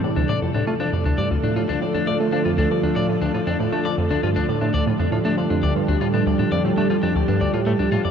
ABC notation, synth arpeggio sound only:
X:1
M:4/4
L:1/16
Q:1/4=118
K:Dm
V:1 name="Synth arpeggio sound" clef=bass
A,, D,, A,, F,, A,, A, F, F,, D,, G,, D,, A,, A,, D,, A,, F,, | A,, A, F, F,, D,, G,, D,, A,, A,, D,, A,, F,, A,, A, F, F,, | D,, G,, D,, A,, A,, D,, A,, F,, A,, A, F, F,, D,, G,, D,, A,, | A,, D,, A,, F,, A,, A, F, F,, D,, G,, D,, A,, A,, D,, A,, F,, |]